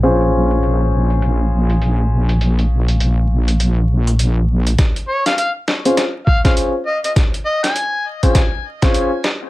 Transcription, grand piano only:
X:1
M:4/4
L:1/16
Q:"Swing 16ths" 1/4=101
K:Db
V:1 name="Grand piano"
[DFAc]16- | [DFAc]16 | z6 z [DFAc] z3 [DFAc]2 z3 | z6 z [DFAc] z3 [DFAc]2 z3 |]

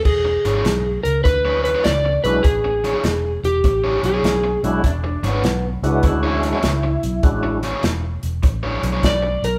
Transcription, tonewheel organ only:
X:1
M:4/4
L:1/8
Q:"Swing" 1/4=100
K:Emix
V:1 name="Tonewheel organ"
z6 z [G,CDEF] | z6 z [G,CDEF] | z3 [G,CDEF]3 z2 | [G,CDEF] z6 z |]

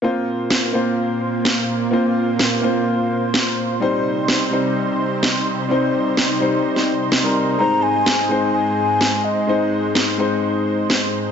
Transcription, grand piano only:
X:1
M:4/4
L:1/16
Q:1/4=127
K:Bbdor
V:1 name="Grand piano"
[B,CFc]6 [B,CFc]8- [B,CFc]2 | [B,CFc]6 [B,CFc]8- [B,CFc]2 | [G,CEc]6 [G,CEc]8- [G,CEc]2 | [G,CEc]6 [G,CEc]6- [G,CEc] [G,CEB]3 |
[A,CEc]6 [A,CEc]8- [A,CEc]2 | [A,CEc]6 [A,CEc]8- [A,CEc]2 |]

